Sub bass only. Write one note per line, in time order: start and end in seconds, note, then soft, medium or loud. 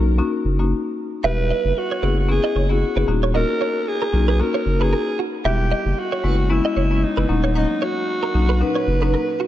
0.00 0.21 B1 loud
0.45 0.73 F#1 medium
1.24 1.52 E1 loud
1.64 1.73 F#1 medium
2.03 2.40 F#1 loud
2.55 2.84 F#1 medium
2.96 3.04 F#1 loud
3.08 3.45 D#1 loud
4.13 4.42 B1 loud
4.66 4.94 F#1 medium
5.45 5.73 E1 loud
5.85 5.94 F#1 medium
6.24 6.61 F#1 loud
6.76 7.05 F#1 loud
7.17 7.25 F#1 loud
7.29 7.66 D#1 loud
8.34 8.63 B1 loud
8.87 9.16 F#1 medium